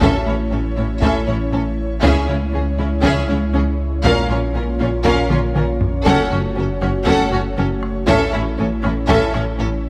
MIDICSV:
0, 0, Header, 1, 10, 480
1, 0, Start_track
1, 0, Tempo, 504202
1, 16, Time_signature, 4, 2, 24, 8
1, 9416, End_track
2, 0, Start_track
2, 0, Title_t, "Violin section"
2, 0, Program_c, 0, 48
2, 22, Note_on_c, 0, 76, 85
2, 242, Note_off_c, 0, 76, 0
2, 266, Note_on_c, 0, 73, 61
2, 342, Note_off_c, 0, 73, 0
2, 495, Note_on_c, 0, 69, 63
2, 571, Note_off_c, 0, 69, 0
2, 736, Note_on_c, 0, 73, 62
2, 812, Note_off_c, 0, 73, 0
2, 978, Note_on_c, 0, 76, 86
2, 1200, Note_off_c, 0, 76, 0
2, 1210, Note_on_c, 0, 73, 71
2, 1286, Note_off_c, 0, 73, 0
2, 1461, Note_on_c, 0, 69, 75
2, 1537, Note_off_c, 0, 69, 0
2, 1937, Note_on_c, 0, 76, 97
2, 2160, Note_off_c, 0, 76, 0
2, 2173, Note_on_c, 0, 73, 60
2, 2249, Note_off_c, 0, 73, 0
2, 2419, Note_on_c, 0, 68, 64
2, 2495, Note_off_c, 0, 68, 0
2, 2660, Note_on_c, 0, 73, 67
2, 2736, Note_off_c, 0, 73, 0
2, 2901, Note_on_c, 0, 76, 93
2, 3122, Note_off_c, 0, 76, 0
2, 3135, Note_on_c, 0, 73, 71
2, 3211, Note_off_c, 0, 73, 0
2, 3382, Note_on_c, 0, 68, 78
2, 3458, Note_off_c, 0, 68, 0
2, 3853, Note_on_c, 0, 77, 113
2, 4078, Note_off_c, 0, 77, 0
2, 4104, Note_on_c, 0, 73, 77
2, 4180, Note_off_c, 0, 73, 0
2, 4343, Note_on_c, 0, 70, 76
2, 4419, Note_off_c, 0, 70, 0
2, 4585, Note_on_c, 0, 73, 79
2, 4661, Note_off_c, 0, 73, 0
2, 4818, Note_on_c, 0, 77, 101
2, 5040, Note_off_c, 0, 77, 0
2, 5066, Note_on_c, 0, 73, 73
2, 5142, Note_off_c, 0, 73, 0
2, 5306, Note_on_c, 0, 70, 85
2, 5382, Note_off_c, 0, 70, 0
2, 5777, Note_on_c, 0, 78, 114
2, 6000, Note_off_c, 0, 78, 0
2, 6023, Note_on_c, 0, 73, 71
2, 6099, Note_off_c, 0, 73, 0
2, 6269, Note_on_c, 0, 69, 78
2, 6345, Note_off_c, 0, 69, 0
2, 6498, Note_on_c, 0, 73, 82
2, 6575, Note_off_c, 0, 73, 0
2, 6731, Note_on_c, 0, 78, 109
2, 6957, Note_off_c, 0, 78, 0
2, 6981, Note_on_c, 0, 73, 86
2, 7057, Note_off_c, 0, 73, 0
2, 7227, Note_on_c, 0, 69, 80
2, 7303, Note_off_c, 0, 69, 0
2, 7696, Note_on_c, 0, 76, 121
2, 7919, Note_off_c, 0, 76, 0
2, 7937, Note_on_c, 0, 73, 71
2, 8013, Note_off_c, 0, 73, 0
2, 8173, Note_on_c, 0, 69, 80
2, 8249, Note_off_c, 0, 69, 0
2, 8415, Note_on_c, 0, 73, 75
2, 8492, Note_off_c, 0, 73, 0
2, 8654, Note_on_c, 0, 76, 110
2, 8878, Note_off_c, 0, 76, 0
2, 8891, Note_on_c, 0, 73, 79
2, 8967, Note_off_c, 0, 73, 0
2, 9133, Note_on_c, 0, 69, 91
2, 9209, Note_off_c, 0, 69, 0
2, 9416, End_track
3, 0, Start_track
3, 0, Title_t, "Violin section"
3, 0, Program_c, 1, 48
3, 6, Note_on_c, 1, 69, 101
3, 234, Note_off_c, 1, 69, 0
3, 248, Note_on_c, 1, 64, 55
3, 324, Note_off_c, 1, 64, 0
3, 487, Note_on_c, 1, 61, 61
3, 563, Note_off_c, 1, 61, 0
3, 724, Note_on_c, 1, 64, 64
3, 800, Note_off_c, 1, 64, 0
3, 972, Note_on_c, 1, 69, 90
3, 1197, Note_off_c, 1, 69, 0
3, 1211, Note_on_c, 1, 64, 69
3, 1287, Note_off_c, 1, 64, 0
3, 1453, Note_on_c, 1, 61, 73
3, 1529, Note_off_c, 1, 61, 0
3, 1932, Note_on_c, 1, 68, 104
3, 2157, Note_off_c, 1, 68, 0
3, 2171, Note_on_c, 1, 64, 62
3, 2247, Note_off_c, 1, 64, 0
3, 2412, Note_on_c, 1, 61, 64
3, 2488, Note_off_c, 1, 61, 0
3, 2654, Note_on_c, 1, 64, 76
3, 2730, Note_off_c, 1, 64, 0
3, 2887, Note_on_c, 1, 68, 101
3, 3115, Note_off_c, 1, 68, 0
3, 3126, Note_on_c, 1, 64, 72
3, 3203, Note_off_c, 1, 64, 0
3, 3367, Note_on_c, 1, 61, 77
3, 3443, Note_off_c, 1, 61, 0
3, 3843, Note_on_c, 1, 70, 101
3, 4072, Note_off_c, 1, 70, 0
3, 4087, Note_on_c, 1, 65, 66
3, 4163, Note_off_c, 1, 65, 0
3, 4327, Note_on_c, 1, 61, 68
3, 4403, Note_off_c, 1, 61, 0
3, 4569, Note_on_c, 1, 65, 78
3, 4645, Note_off_c, 1, 65, 0
3, 4804, Note_on_c, 1, 70, 108
3, 5033, Note_off_c, 1, 70, 0
3, 5044, Note_on_c, 1, 65, 83
3, 5121, Note_off_c, 1, 65, 0
3, 5287, Note_on_c, 1, 61, 76
3, 5364, Note_off_c, 1, 61, 0
3, 5763, Note_on_c, 1, 69, 116
3, 5993, Note_off_c, 1, 69, 0
3, 5998, Note_on_c, 1, 66, 72
3, 6074, Note_off_c, 1, 66, 0
3, 6240, Note_on_c, 1, 61, 74
3, 6316, Note_off_c, 1, 61, 0
3, 6483, Note_on_c, 1, 66, 81
3, 6559, Note_off_c, 1, 66, 0
3, 6730, Note_on_c, 1, 69, 126
3, 6956, Note_off_c, 1, 69, 0
3, 6966, Note_on_c, 1, 66, 91
3, 7042, Note_off_c, 1, 66, 0
3, 7212, Note_on_c, 1, 61, 87
3, 7288, Note_off_c, 1, 61, 0
3, 7689, Note_on_c, 1, 69, 126
3, 7916, Note_off_c, 1, 69, 0
3, 7932, Note_on_c, 1, 64, 83
3, 8008, Note_off_c, 1, 64, 0
3, 8173, Note_on_c, 1, 61, 82
3, 8250, Note_off_c, 1, 61, 0
3, 8407, Note_on_c, 1, 64, 80
3, 8483, Note_off_c, 1, 64, 0
3, 8644, Note_on_c, 1, 69, 117
3, 8873, Note_off_c, 1, 69, 0
3, 8889, Note_on_c, 1, 64, 76
3, 8966, Note_off_c, 1, 64, 0
3, 9126, Note_on_c, 1, 61, 79
3, 9202, Note_off_c, 1, 61, 0
3, 9416, End_track
4, 0, Start_track
4, 0, Title_t, "Analog synth pad"
4, 0, Program_c, 2, 89
4, 0, Note_on_c, 2, 57, 85
4, 0, Note_on_c, 2, 61, 86
4, 0, Note_on_c, 2, 73, 80
4, 17, Note_on_c, 2, 64, 85
4, 1898, Note_off_c, 2, 57, 0
4, 1928, Note_on_c, 2, 56, 83
4, 3815, Note_off_c, 2, 73, 0
4, 3818, Note_off_c, 2, 61, 0
4, 3852, Note_off_c, 2, 56, 0
4, 3853, Note_on_c, 2, 65, 81
4, 3853, Note_on_c, 2, 73, 86
4, 3854, Note_on_c, 2, 61, 85
4, 3855, Note_on_c, 2, 58, 85
4, 3856, Note_off_c, 2, 64, 0
4, 5771, Note_on_c, 2, 57, 91
4, 5774, Note_off_c, 2, 65, 0
4, 5775, Note_off_c, 2, 58, 0
4, 5777, Note_on_c, 2, 66, 96
4, 7686, Note_on_c, 2, 64, 92
4, 7696, Note_off_c, 2, 66, 0
4, 9416, Note_off_c, 2, 57, 0
4, 9416, Note_off_c, 2, 61, 0
4, 9416, Note_off_c, 2, 64, 0
4, 9416, Note_off_c, 2, 73, 0
4, 9416, End_track
5, 0, Start_track
5, 0, Title_t, "French horn section"
5, 0, Program_c, 3, 60
5, 13, Note_on_c, 3, 64, 77
5, 15, Note_on_c, 3, 61, 77
5, 181, Note_off_c, 3, 64, 0
5, 183, Note_off_c, 3, 61, 0
5, 976, Note_on_c, 3, 64, 79
5, 977, Note_on_c, 3, 61, 84
5, 1143, Note_off_c, 3, 64, 0
5, 1144, Note_off_c, 3, 61, 0
5, 1936, Note_on_c, 3, 64, 78
5, 1939, Note_on_c, 3, 61, 79
5, 2103, Note_off_c, 3, 64, 0
5, 2106, Note_off_c, 3, 61, 0
5, 2889, Note_on_c, 3, 61, 85
5, 2894, Note_on_c, 3, 64, 89
5, 3059, Note_off_c, 3, 61, 0
5, 3062, Note_off_c, 3, 64, 0
5, 3849, Note_on_c, 3, 61, 87
5, 3850, Note_on_c, 3, 65, 80
5, 4019, Note_off_c, 3, 61, 0
5, 4020, Note_off_c, 3, 65, 0
5, 4802, Note_on_c, 3, 65, 100
5, 4805, Note_on_c, 3, 61, 99
5, 4974, Note_off_c, 3, 65, 0
5, 4976, Note_off_c, 3, 61, 0
5, 5765, Note_on_c, 3, 69, 101
5, 5769, Note_on_c, 3, 61, 96
5, 5937, Note_off_c, 3, 69, 0
5, 5939, Note_off_c, 3, 61, 0
5, 6725, Note_on_c, 3, 69, 98
5, 6729, Note_on_c, 3, 61, 101
5, 6897, Note_off_c, 3, 69, 0
5, 6899, Note_off_c, 3, 61, 0
5, 7680, Note_on_c, 3, 61, 100
5, 7682, Note_on_c, 3, 64, 98
5, 7853, Note_off_c, 3, 61, 0
5, 7854, Note_off_c, 3, 64, 0
5, 8651, Note_on_c, 3, 61, 104
5, 8652, Note_on_c, 3, 64, 97
5, 8820, Note_off_c, 3, 61, 0
5, 8821, Note_off_c, 3, 64, 0
5, 9416, End_track
6, 0, Start_track
6, 0, Title_t, "Viola section"
6, 0, Program_c, 4, 48
6, 16, Note_on_c, 4, 61, 85
6, 239, Note_off_c, 4, 61, 0
6, 263, Note_on_c, 4, 61, 61
6, 339, Note_off_c, 4, 61, 0
6, 505, Note_on_c, 4, 61, 66
6, 581, Note_off_c, 4, 61, 0
6, 744, Note_on_c, 4, 61, 69
6, 820, Note_off_c, 4, 61, 0
6, 981, Note_on_c, 4, 61, 82
6, 1202, Note_off_c, 4, 61, 0
6, 1219, Note_on_c, 4, 61, 69
6, 1295, Note_off_c, 4, 61, 0
6, 1461, Note_on_c, 4, 61, 70
6, 1537, Note_off_c, 4, 61, 0
6, 1936, Note_on_c, 4, 61, 93
6, 2159, Note_off_c, 4, 61, 0
6, 2176, Note_on_c, 4, 61, 69
6, 2253, Note_off_c, 4, 61, 0
6, 2424, Note_on_c, 4, 61, 64
6, 2500, Note_off_c, 4, 61, 0
6, 2660, Note_on_c, 4, 61, 75
6, 2736, Note_off_c, 4, 61, 0
6, 2894, Note_on_c, 4, 61, 98
6, 3118, Note_off_c, 4, 61, 0
6, 3133, Note_on_c, 4, 61, 73
6, 3209, Note_off_c, 4, 61, 0
6, 3366, Note_on_c, 4, 61, 81
6, 3442, Note_off_c, 4, 61, 0
6, 3852, Note_on_c, 4, 61, 95
6, 4077, Note_off_c, 4, 61, 0
6, 4089, Note_on_c, 4, 61, 80
6, 4165, Note_off_c, 4, 61, 0
6, 4325, Note_on_c, 4, 61, 75
6, 4401, Note_off_c, 4, 61, 0
6, 4565, Note_on_c, 4, 61, 86
6, 4641, Note_off_c, 4, 61, 0
6, 4806, Note_on_c, 4, 61, 98
6, 5034, Note_off_c, 4, 61, 0
6, 5051, Note_on_c, 4, 61, 88
6, 5127, Note_off_c, 4, 61, 0
6, 5286, Note_on_c, 4, 61, 78
6, 5363, Note_off_c, 4, 61, 0
6, 5773, Note_on_c, 4, 61, 118
6, 5998, Note_off_c, 4, 61, 0
6, 6018, Note_on_c, 4, 61, 75
6, 6095, Note_off_c, 4, 61, 0
6, 6253, Note_on_c, 4, 61, 75
6, 6329, Note_off_c, 4, 61, 0
6, 6493, Note_on_c, 4, 61, 93
6, 6570, Note_off_c, 4, 61, 0
6, 6727, Note_on_c, 4, 61, 103
6, 6955, Note_off_c, 4, 61, 0
6, 6972, Note_on_c, 4, 61, 78
6, 7048, Note_off_c, 4, 61, 0
6, 7214, Note_on_c, 4, 61, 96
6, 7290, Note_off_c, 4, 61, 0
6, 7691, Note_on_c, 4, 61, 107
6, 7916, Note_off_c, 4, 61, 0
6, 7933, Note_on_c, 4, 61, 87
6, 8009, Note_off_c, 4, 61, 0
6, 8173, Note_on_c, 4, 61, 79
6, 8249, Note_off_c, 4, 61, 0
6, 8408, Note_on_c, 4, 61, 93
6, 8484, Note_off_c, 4, 61, 0
6, 8653, Note_on_c, 4, 61, 105
6, 8877, Note_off_c, 4, 61, 0
6, 8896, Note_on_c, 4, 61, 89
6, 8973, Note_off_c, 4, 61, 0
6, 9140, Note_on_c, 4, 61, 78
6, 9217, Note_off_c, 4, 61, 0
6, 9416, End_track
7, 0, Start_track
7, 0, Title_t, "Cello section"
7, 0, Program_c, 5, 48
7, 15, Note_on_c, 5, 45, 92
7, 91, Note_off_c, 5, 45, 0
7, 254, Note_on_c, 5, 45, 62
7, 330, Note_off_c, 5, 45, 0
7, 498, Note_on_c, 5, 45, 64
7, 574, Note_off_c, 5, 45, 0
7, 735, Note_on_c, 5, 45, 64
7, 811, Note_off_c, 5, 45, 0
7, 970, Note_on_c, 5, 45, 92
7, 1046, Note_off_c, 5, 45, 0
7, 1217, Note_on_c, 5, 45, 65
7, 1293, Note_off_c, 5, 45, 0
7, 1452, Note_on_c, 5, 45, 67
7, 1528, Note_off_c, 5, 45, 0
7, 1935, Note_on_c, 5, 49, 95
7, 2011, Note_off_c, 5, 49, 0
7, 2170, Note_on_c, 5, 49, 67
7, 2246, Note_off_c, 5, 49, 0
7, 2413, Note_on_c, 5, 49, 63
7, 2490, Note_off_c, 5, 49, 0
7, 2653, Note_on_c, 5, 49, 72
7, 2729, Note_off_c, 5, 49, 0
7, 2888, Note_on_c, 5, 49, 101
7, 2964, Note_off_c, 5, 49, 0
7, 3133, Note_on_c, 5, 49, 72
7, 3209, Note_off_c, 5, 49, 0
7, 3371, Note_on_c, 5, 49, 72
7, 3447, Note_off_c, 5, 49, 0
7, 3852, Note_on_c, 5, 46, 103
7, 3928, Note_off_c, 5, 46, 0
7, 4092, Note_on_c, 5, 46, 75
7, 4169, Note_off_c, 5, 46, 0
7, 4337, Note_on_c, 5, 46, 75
7, 4413, Note_off_c, 5, 46, 0
7, 4577, Note_on_c, 5, 46, 73
7, 4653, Note_off_c, 5, 46, 0
7, 4810, Note_on_c, 5, 46, 103
7, 4886, Note_off_c, 5, 46, 0
7, 5048, Note_on_c, 5, 46, 81
7, 5124, Note_off_c, 5, 46, 0
7, 5293, Note_on_c, 5, 46, 80
7, 5369, Note_off_c, 5, 46, 0
7, 5770, Note_on_c, 5, 42, 120
7, 5847, Note_off_c, 5, 42, 0
7, 6007, Note_on_c, 5, 42, 80
7, 6084, Note_off_c, 5, 42, 0
7, 6247, Note_on_c, 5, 42, 79
7, 6323, Note_off_c, 5, 42, 0
7, 6487, Note_on_c, 5, 42, 76
7, 6563, Note_off_c, 5, 42, 0
7, 6730, Note_on_c, 5, 42, 120
7, 6806, Note_off_c, 5, 42, 0
7, 6971, Note_on_c, 5, 42, 76
7, 7048, Note_off_c, 5, 42, 0
7, 7210, Note_on_c, 5, 42, 85
7, 7286, Note_off_c, 5, 42, 0
7, 7691, Note_on_c, 5, 45, 120
7, 7767, Note_off_c, 5, 45, 0
7, 7936, Note_on_c, 5, 45, 84
7, 8013, Note_off_c, 5, 45, 0
7, 8176, Note_on_c, 5, 45, 81
7, 8252, Note_off_c, 5, 45, 0
7, 8418, Note_on_c, 5, 45, 86
7, 8494, Note_off_c, 5, 45, 0
7, 8654, Note_on_c, 5, 45, 115
7, 8730, Note_off_c, 5, 45, 0
7, 8892, Note_on_c, 5, 45, 77
7, 8969, Note_off_c, 5, 45, 0
7, 9136, Note_on_c, 5, 45, 84
7, 9212, Note_off_c, 5, 45, 0
7, 9416, End_track
8, 0, Start_track
8, 0, Title_t, "Double bass section"
8, 0, Program_c, 6, 48
8, 22, Note_on_c, 6, 33, 92
8, 99, Note_off_c, 6, 33, 0
8, 260, Note_on_c, 6, 33, 61
8, 336, Note_off_c, 6, 33, 0
8, 503, Note_on_c, 6, 33, 64
8, 579, Note_off_c, 6, 33, 0
8, 742, Note_on_c, 6, 33, 59
8, 818, Note_off_c, 6, 33, 0
8, 980, Note_on_c, 6, 33, 92
8, 1056, Note_off_c, 6, 33, 0
8, 1220, Note_on_c, 6, 33, 68
8, 1297, Note_off_c, 6, 33, 0
8, 1460, Note_on_c, 6, 33, 61
8, 1536, Note_off_c, 6, 33, 0
8, 1942, Note_on_c, 6, 37, 96
8, 2018, Note_off_c, 6, 37, 0
8, 2177, Note_on_c, 6, 37, 65
8, 2253, Note_off_c, 6, 37, 0
8, 2418, Note_on_c, 6, 37, 64
8, 2494, Note_off_c, 6, 37, 0
8, 2653, Note_on_c, 6, 37, 64
8, 2729, Note_off_c, 6, 37, 0
8, 2895, Note_on_c, 6, 37, 100
8, 2971, Note_off_c, 6, 37, 0
8, 3134, Note_on_c, 6, 37, 70
8, 3210, Note_off_c, 6, 37, 0
8, 3369, Note_on_c, 6, 37, 71
8, 3445, Note_off_c, 6, 37, 0
8, 3849, Note_on_c, 6, 34, 106
8, 3926, Note_off_c, 6, 34, 0
8, 4094, Note_on_c, 6, 34, 71
8, 4170, Note_off_c, 6, 34, 0
8, 4331, Note_on_c, 6, 34, 80
8, 4407, Note_off_c, 6, 34, 0
8, 4576, Note_on_c, 6, 34, 68
8, 4652, Note_off_c, 6, 34, 0
8, 4817, Note_on_c, 6, 34, 109
8, 4893, Note_off_c, 6, 34, 0
8, 5058, Note_on_c, 6, 34, 79
8, 5134, Note_off_c, 6, 34, 0
8, 5302, Note_on_c, 6, 34, 78
8, 5378, Note_off_c, 6, 34, 0
8, 5781, Note_on_c, 6, 30, 115
8, 5857, Note_off_c, 6, 30, 0
8, 6018, Note_on_c, 6, 30, 80
8, 6095, Note_off_c, 6, 30, 0
8, 6258, Note_on_c, 6, 30, 83
8, 6334, Note_off_c, 6, 30, 0
8, 6497, Note_on_c, 6, 30, 72
8, 6574, Note_off_c, 6, 30, 0
8, 6739, Note_on_c, 6, 30, 124
8, 6815, Note_off_c, 6, 30, 0
8, 6979, Note_on_c, 6, 30, 80
8, 7055, Note_off_c, 6, 30, 0
8, 7222, Note_on_c, 6, 30, 81
8, 7298, Note_off_c, 6, 30, 0
8, 7701, Note_on_c, 6, 33, 124
8, 7777, Note_off_c, 6, 33, 0
8, 7944, Note_on_c, 6, 33, 84
8, 8020, Note_off_c, 6, 33, 0
8, 8177, Note_on_c, 6, 33, 84
8, 8253, Note_off_c, 6, 33, 0
8, 8419, Note_on_c, 6, 33, 79
8, 8495, Note_off_c, 6, 33, 0
8, 8657, Note_on_c, 6, 33, 118
8, 8733, Note_off_c, 6, 33, 0
8, 8896, Note_on_c, 6, 33, 83
8, 8973, Note_off_c, 6, 33, 0
8, 9142, Note_on_c, 6, 33, 75
8, 9218, Note_off_c, 6, 33, 0
8, 9416, End_track
9, 0, Start_track
9, 0, Title_t, "Sub bass"
9, 0, Program_c, 7, 38
9, 13, Note_on_c, 7, 33, 81
9, 1934, Note_on_c, 7, 37, 85
9, 1949, Note_off_c, 7, 33, 0
9, 3851, Note_on_c, 7, 34, 86
9, 3866, Note_off_c, 7, 37, 0
9, 5772, Note_on_c, 7, 30, 96
9, 5786, Note_off_c, 7, 34, 0
9, 7693, Note_on_c, 7, 33, 90
9, 7707, Note_off_c, 7, 30, 0
9, 9416, Note_off_c, 7, 33, 0
9, 9416, End_track
10, 0, Start_track
10, 0, Title_t, "Taiko and cinematic ensemble drums"
10, 14, Note_on_c, 9, 41, 108
10, 109, Note_off_c, 9, 41, 0
10, 971, Note_on_c, 9, 41, 86
10, 1066, Note_off_c, 9, 41, 0
10, 1933, Note_on_c, 9, 41, 110
10, 2028, Note_off_c, 9, 41, 0
10, 2890, Note_on_c, 9, 41, 81
10, 2985, Note_off_c, 9, 41, 0
10, 3849, Note_on_c, 9, 41, 105
10, 3944, Note_off_c, 9, 41, 0
10, 4807, Note_on_c, 9, 41, 87
10, 4903, Note_off_c, 9, 41, 0
10, 5049, Note_on_c, 9, 47, 97
10, 5144, Note_off_c, 9, 47, 0
10, 5291, Note_on_c, 9, 47, 103
10, 5386, Note_off_c, 9, 47, 0
10, 5530, Note_on_c, 9, 43, 106
10, 5625, Note_off_c, 9, 43, 0
10, 5771, Note_on_c, 9, 41, 113
10, 5866, Note_off_c, 9, 41, 0
10, 6495, Note_on_c, 9, 37, 45
10, 6590, Note_off_c, 9, 37, 0
10, 6734, Note_on_c, 9, 41, 91
10, 6830, Note_off_c, 9, 41, 0
10, 7452, Note_on_c, 9, 37, 48
10, 7547, Note_off_c, 9, 37, 0
10, 7693, Note_on_c, 9, 41, 114
10, 7788, Note_off_c, 9, 41, 0
10, 8415, Note_on_c, 9, 37, 46
10, 8510, Note_off_c, 9, 37, 0
10, 8652, Note_on_c, 9, 41, 91
10, 8747, Note_off_c, 9, 41, 0
10, 8895, Note_on_c, 9, 37, 48
10, 8990, Note_off_c, 9, 37, 0
10, 9416, End_track
0, 0, End_of_file